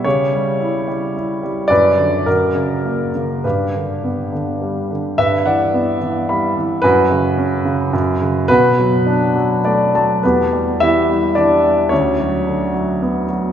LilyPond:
<<
  \new Staff \with { instrumentName = "Grand piano" } { \time 3/4 \key b \minor \tempo 4 = 108 <g' cis''>2. | <b' d''>4 <fis' ais'>4. r8 | <g' b'>2. | <b' e''>8 <d'' fis''>4 r8 b''4 |
<fis' b'>2. | <fis' b'>2 d''8 a''8 | <b fis' g' b'>4 <e' g' e''>4 <d' g' d''>4 | <cis' fis' cis''>2~ <cis' fis' cis''>8 r8 | }
  \new Staff \with { instrumentName = "Grand piano" } { \clef bass \time 3/4 \key b \minor cis8 g8 e'8 g8 e'8 g8 | fis,8 d8 fis,8 cis8 ais8 cis8 | g,8 d8 b8 d8 g8 d8 | g,8 e8 b8 e8 g8 e8 |
fis,8 cis8 cis'8 cis8 fis,8 cis8 | b,8 fis8 d'8 fis8 a8 fis8 | e,8 g8 e8 g8 e8 g8 | d,8 fis8 d8 fis8 b8 fis8 | }
>>